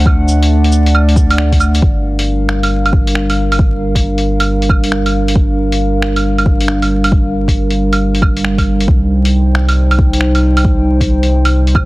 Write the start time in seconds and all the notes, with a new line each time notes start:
Already playing: D2 A3 D4 F#5
0.06 D5, kick, claves
0.28 cabasa
0.43 closed hi-hat
0.64 closed hi-hat
0.72 cabasa
0.86 closed hi-hat
0.95 claves
1.09 closed hi-hat
1.16 kick, cabasa
1.30 closed hi-hat, claves
1.38 finger snap
1.52 kick, closed hi-hat
1.60 cabasa, claves
1.75 closed hi-hat, cabasa
1.81 G1 G3 D4 A#4 F5, kick
2.19 closed hi-hat
2.49 finger snap
2.63 closed hi-hat, claves
2.86 closed hi-hat, claves
2.93 kick
3.07 closed hi-hat
3.15 finger snap
3.30 closed hi-hat, claves
3.52 closed hi-hat, claves
3.59 kick
3.95 kick, closed hi-hat
4.18 closed hi-hat
4.40 closed hi-hat, claves
4.62 closed hi-hat
4.69 kick, claves
4.84 closed hi-hat
4.92 finger snap
5.06 closed hi-hat, claves
5.28 closed hi-hat
5.36 kick
5.72 closed hi-hat
6.02 finger snap
6.16 closed hi-hat, claves
6.38 closed hi-hat, claves
6.46 kick
6.61 closed hi-hat
6.68 finger snap
6.82 closed hi-hat, claves
7.04 closed hi-hat, claves
7.12 kick
7.48 kick, closed hi-hat
7.70 closed hi-hat
7.93 closed hi-hat, claves
8.15 closed hi-hat
8.22 kick, claves
8.37 closed hi-hat
8.45 finger snap
8.58 kick, closed hi-hat, claves
8.80 closed hi-hat
8.88 C2 D#4 C5 G5, kick
9.25 closed hi-hat
9.55 finger snap
9.69 closed hi-hat, claves
9.91 closed hi-hat, claves
9.98 kick
10.13 closed hi-hat
10.21 finger snap
10.35 closed hi-hat, claves
10.57 closed hi-hat, claves
10.65 kick
11.01 kick, closed hi-hat
11.23 closed hi-hat
11.45 closed hi-hat, claves
11.67 closed hi-hat
11.75 kick, claves